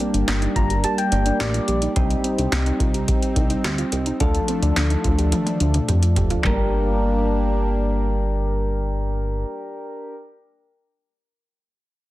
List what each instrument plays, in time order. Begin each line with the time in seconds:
Already playing: analog synth pad G3 A#3 D4, synth keys A#3 D4 G4
0.00 closed hi-hat
0.14 analog synth bass G1, synth arpeggio sound D4, closed hi-hat
0.28 analog synth bass G1, synth arpeggio sound D4, snare, closed hi-hat
0.42 synth arpeggio sound D#4, closed hi-hat
0.56 analog synth bass G1, synth arpeggio sound F4, synth keys A#5, kick, closed hi-hat
0.70 synth arpeggio sound G4, closed hi-hat
0.84 synth arpeggio sound G4, synth keys A5, closed hi-hat
0.98 synth keys G5, closed hi-hat
1.12 analog synth bass G1, synth keys A#3 D4 G4, synth arpeggio sound D4, closed hi-hat
1.26 synth arpeggio sound D4, closed hi-hat
1.40 analog synth bass A1, synth arpeggio sound G4, synth keys D5, snare, closed hi-hat
1.54 synth arpeggio sound F4, closed hi-hat
1.68 analog synth bass A#1, synth arpeggio sound G4, closed hi-hat
1.82 synth arpeggio sound D#4, closed hi-hat
1.96 analog synth bass C2, analog synth pad C4 D#4, synth keys C4 D#4 G4, synth arpeggio sound D4, kick, closed hi-hat
2.10 closed hi-hat
2.24 synth arpeggio sound C4, closed hi-hat
2.38 analog synth bass C2, synth arpeggio sound D4, closed hi-hat
2.52 analog synth bass C2, synth arpeggio sound D4, snare, closed hi-hat
2.66 synth arpeggio sound D#4, closed hi-hat
2.80 analog synth bass C2, synth arpeggio sound F4, kick, closed hi-hat
2.94 synth arpeggio sound G4, closed hi-hat
3.08 synth arpeggio sound G4, kick, closed hi-hat
3.23 closed hi-hat
3.36 analog synth bass C2, synth arpeggio sound D#4, kick, closed hi-hat
3.50 synth arpeggio sound D#4, closed hi-hat
3.64 analog synth bass D2, synth arpeggio sound G4, snare, closed hi-hat
3.78 synth arpeggio sound F4, closed hi-hat
3.92 analog synth bass C2, synth arpeggio sound G4, closed hi-hat
4.06 synth arpeggio sound D#4, closed hi-hat
4.20 analog synth bass D2, analog synth pad F3 A3 D4, synth keys D4 F4 A4, synth arpeggio sound D4, kick, closed hi-hat
4.35 closed hi-hat
4.48 synth arpeggio sound C4, closed hi-hat
4.62 analog synth bass D2, synth arpeggio sound D4, closed hi-hat
4.76 analog synth bass D2, synth arpeggio sound D4, snare, closed hi-hat
4.90 synth arpeggio sound D#4, closed hi-hat
5.04 analog synth bass D2, synth arpeggio sound F4, kick, closed hi-hat
5.19 synth arpeggio sound G4, closed hi-hat
5.32 synth arpeggio sound F4, closed hi-hat, high tom
5.46 closed hi-hat, high tom
5.60 analog synth bass D2, synth arpeggio sound D4, closed hi-hat
5.74 synth arpeggio sound D4, closed hi-hat, mid tom
5.88 analog synth bass F2, synth arpeggio sound G4, closed hi-hat, mid tom
6.03 synth arpeggio sound F4, closed hi-hat
6.16 analog synth bass F1, synth arpeggio sound G4, closed hi-hat, floor tom
6.30 synth arpeggio sound F4, closed hi-hat, floor tom
6.43 analog synth bass G1, analog synth pad G3 A#3 D4, synth arpeggio sound G3, synth keys D4 G4 A#4, kick, clap
6.49 synth arpeggio sound A#3 D4
6.57 synth arpeggio sound G4